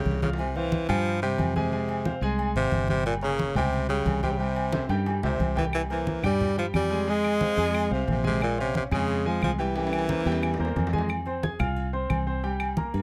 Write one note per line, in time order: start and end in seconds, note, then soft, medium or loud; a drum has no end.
0.00 0.20 C#3 medium
0.00 0.16 G4 medium
0.00 0.16 G5 medium
0.00 0.16 G6 medium
0.05 0.83 C2 medium
0.05 high conga medium
0.11 low timbale medium
0.22 0.30 C#3 medium
0.22 0.36 F4 medium
0.22 0.36 F5 medium
0.22 0.36 F6 medium
0.22 high conga medium
0.22 low timbale medium
0.33 low timbale medium
0.39 0.58 C3 medium
0.39 high conga soft
0.39 low agogo medium
0.56 0.88 E3 loud
0.56 0.83 C4 medium
0.56 0.83 C5 medium
0.56 0.84 F5 medium
0.56 high conga soft
0.56 low agogo medium
0.72 high conga loud
0.89 1.35 G2 medium
0.89 1.20 F3 loud
0.89 1.16 G3 loud
0.89 1.16 G4 loud
0.89 1.17 G5 loud
0.89 high conga soft
0.89 low conga medium
0.89 low agogo loud
1.06 high conga soft
1.06 low agogo medium
1.22 1.53 C3 medium
1.22 1.50 G3 medium
1.22 1.50 G4 medium
1.22 1.50 G5 medium
1.22 high conga soft
1.38 2.17 F2 medium
1.38 high conga medium
1.38 low timbale medium
1.38 low agogo loud
1.56 2.19 C3 medium
1.56 1.70 G#3 medium
1.56 1.70 G#4 medium
1.56 1.70 G#5 medium
1.56 high conga medium
1.72 2.00 G#3 medium
1.72 2.00 G#4 medium
1.72 2.00 G#5 medium
1.72 high conga soft
1.72 low agogo medium
1.89 high conga soft
1.89 low agogo medium
2.05 2.19 C4 medium
2.05 2.20 C5 medium
2.05 2.20 F5 medium
2.05 high conga loud
2.21 2.53 C2 loud
2.21 2.50 G#3 loud
2.21 2.50 G#4 medium
2.21 2.50 G#5 medium
2.21 low agogo medium
2.39 high conga soft
2.39 low agogo loud
2.55 2.71 G#1 medium
2.55 2.87 C3 loud
2.55 2.83 C4 medium
2.55 2.84 C5 medium
2.55 2.84 F5 medium
2.55 high conga soft
2.72 3.50 G1 medium
2.72 high conga medium
2.72 low agogo medium
2.88 3.05 C3 loud
2.88 3.17 G3 medium
2.88 3.17 G4 medium
2.88 3.17 G5 medium
2.88 high conga medium
3.05 3.14 A#2 loud
3.05 high conga soft
3.05 low agogo loud
3.22 3.54 C#3 medium
3.22 3.50 A#3 medium
3.22 3.50 A#4 medium
3.22 3.50 C#5 medium
3.22 high conga soft
3.22 low agogo medium
3.39 high conga medium
3.55 4.02 C#2 medium
3.55 3.87 C3 medium
3.55 3.83 G3 medium
3.55 3.84 G4 loud
3.55 3.84 G5 loud
3.55 high conga soft
3.55 low conga medium
3.55 low agogo loud
3.73 high conga soft
3.73 low agogo medium
3.89 4.21 C#3 medium
3.89 4.17 G3 medium
3.89 4.17 G4 medium
3.89 4.17 G5 medium
3.89 high conga soft
4.05 4.84 C2 medium
4.05 high conga medium
4.05 low timbale medium
4.05 low agogo loud
4.23 4.32 C3 medium
4.23 4.37 G3 medium
4.23 4.37 G4 medium
4.23 4.37 G5 medium
4.23 high conga medium
4.31 4.39 C#3 medium
4.37 4.90 C3 medium
4.37 4.67 G3 medium
4.37 4.67 G4 medium
4.37 4.67 G5 medium
4.37 high conga soft
4.37 low agogo medium
4.56 high conga soft
4.56 low agogo loud
4.72 4.87 C4 medium
4.72 4.87 C5 medium
4.72 4.87 E5 medium
4.72 high conga loud
4.72 high timbale medium
4.89 5.21 G2 medium
4.89 5.17 G3 medium
4.89 5.17 G4 loud
4.89 5.17 G5 medium
4.89 high timbale medium
4.89 low agogo medium
5.06 high conga soft
5.06 low timbale medium
5.06 low agogo loud
5.23 5.39 C#2 medium
5.23 5.55 C3 medium
5.23 5.51 C4 medium
5.23 5.51 C5 medium
5.23 5.51 E5 medium
5.23 high conga soft
5.23 low timbale loud
5.39 6.18 C2 medium
5.39 high conga medium
5.39 low agogo medium
5.56 5.65 E3 medium
5.56 5.84 G3 medium
5.56 5.84 G4 medium
5.56 5.84 G5 medium
5.56 high conga medium
5.56 low timbale medium
5.73 5.82 E3 loud
5.73 high conga soft
5.73 low agogo loud
5.73 claves medium
5.90 6.22 E3 medium
5.90 6.18 A#3 medium
5.90 6.18 A#4 medium
5.90 6.18 C5 medium
5.90 high conga soft
5.90 low agogo medium
6.07 high conga medium
6.23 6.70 G2 medium
6.23 6.51 G3 medium
6.23 6.56 G3 loud
6.23 6.51 G4 medium
6.23 6.51 G5 loud
6.23 high conga soft
6.23 low conga medium
6.23 low agogo loud
6.23 claves medium
6.40 high conga soft
6.40 low conga medium
6.40 low agogo medium
6.57 6.66 F3 medium
6.57 6.85 G3 medium
6.57 6.85 G4 medium
6.57 6.85 G5 medium
6.57 high conga soft
6.74 7.52 F2 medium
6.74 7.11 G3 loud
6.74 high conga medium
6.74 low agogo loud
6.74 claves medium
6.90 7.04 G#3 medium
6.90 7.04 G#4 medium
6.90 7.04 G#5 medium
7.07 7.35 G#3 medium
7.07 7.92 G#3 loud
7.07 7.35 G#4 medium
7.07 7.35 G#5 medium
7.07 high conga soft
7.07 low agogo medium
7.24 high conga soft
7.24 low agogo medium
7.24 claves medium
7.41 7.55 C4 medium
7.41 7.55 C5 medium
7.41 7.55 F5 medium
7.41 high conga loud
7.57 7.89 F2 medium
7.57 7.85 G#3 medium
7.57 7.85 G#4 loud
7.57 7.85 G#5 loud
7.57 low agogo medium
7.75 high conga soft
7.75 low agogo loud
7.75 claves medium
7.91 8.07 C2 medium
7.91 8.08 C3 medium
7.91 8.18 C4 medium
7.91 8.19 C5 medium
7.91 8.19 F5 medium
7.91 high conga soft
8.08 8.86 A#1 medium
8.08 8.25 C3 medium
8.08 high conga medium
8.08 low timbale medium
8.08 low agogo medium
8.24 8.41 C3 medium
8.24 8.52 G#3 medium
8.24 8.52 G#4 medium
8.24 8.52 G#5 medium
8.24 high conga loud
8.41 8.58 A#2 medium
8.41 high conga soft
8.41 low agogo loud
8.41 claves medium
8.58 8.75 C3 medium
8.58 8.86 C#4 medium
8.58 8.86 C#5 medium
8.58 8.86 F5 medium
8.58 high conga soft
8.58 low agogo medium
8.75 8.84 C3 medium
8.75 high conga medium
8.91 9.38 F2 loud
8.91 9.29 C#3 loud
8.91 9.19 G#3 loud
8.91 9.19 G#4 loud
8.91 9.20 G#5 medium
8.91 high conga soft
8.91 low conga medium
8.91 low agogo loud
8.91 claves medium
9.08 high conga soft
9.08 low agogo medium
9.25 9.43 F3 medium
9.25 9.53 G#3 medium
9.25 9.53 G#4 medium
9.25 9.53 G#5 medium
9.25 high conga soft
9.42 10.20 C2 medium
9.42 9.51 F3 medium
9.42 high conga medium
9.42 low agogo loud
9.42 claves medium
9.58 10.73 E3 medium
9.58 9.72 G3 medium
9.58 9.73 G4 medium
9.58 9.73 G5 medium
9.76 10.03 G3 medium
9.76 10.03 G4 medium
9.76 10.03 G5 medium
9.76 high conga soft
9.76 high timbale medium
9.76 low agogo medium
9.87 high timbale medium
9.93 high conga soft
9.93 low agogo loud
9.93 claves medium
9.99 high timbale medium
10.09 10.23 A#3 medium
10.09 10.23 A#4 medium
10.09 10.23 C5 medium
10.09 high conga loud
10.09 high timbale medium
10.21 high timbale medium
10.25 10.57 E2 loud
10.25 10.54 G3 loud
10.25 10.54 G4 loud
10.25 10.54 G5 loud
10.25 low agogo medium
10.32 high timbale loud
10.43 high conga soft
10.43 low timbale medium
10.43 low agogo loud
10.43 claves medium
10.54 low timbale loud
10.59 10.75 E2 medium
10.59 10.87 A#3 medium
10.59 10.87 A#4 medium
10.59 10.87 C5 medium
10.59 high conga soft
10.65 low timbale medium
10.76 11.54 F2 medium
10.76 high conga medium
10.76 low timbale medium
10.76 low agogo medium
10.87 low timbale loud
10.93 11.07 G#3 medium
10.93 11.07 G#4 medium
10.93 11.07 G#5 medium
10.93 high conga medium
10.98 low timbale loud
11.09 high conga soft
11.09 low agogo loud
11.09 claves medium
11.26 11.40 C4 medium
11.26 11.40 C5 medium
11.26 11.40 C6 medium
11.26 high conga soft
11.26 low agogo medium
11.43 11.57 G#4 medium
11.43 11.57 G#5 medium
11.43 11.57 G#6 medium
11.43 high conga loud
11.59 12.07 C2 loud
11.59 11.87 F4 medium
11.59 11.87 F5 medium
11.59 11.87 F6 medium
11.59 high conga soft
11.59 low conga medium
11.59 low agogo loud
11.59 claves medium
11.76 high conga soft
11.76 low agogo medium
11.93 12.21 C4 medium
11.93 12.21 C5 medium
11.93 12.21 C6 medium
11.93 high conga soft
12.10 12.88 C2 medium
12.10 high conga medium
12.10 low agogo loud
12.10 claves medium
12.27 12.41 C4 medium
12.27 12.41 C5 medium
12.27 12.41 C6 medium
12.43 12.71 G3 medium
12.43 12.71 G4 medium
12.43 12.71 G5 medium
12.43 high conga soft
12.43 low agogo medium
12.60 high conga soft
12.60 low agogo loud
12.60 claves medium
12.77 13.02 A#3 medium
12.77 13.02 A#4 medium
12.77 13.02 A#5 medium
12.77 high conga loud
12.94 13.02 G2 loud
12.94 low agogo medium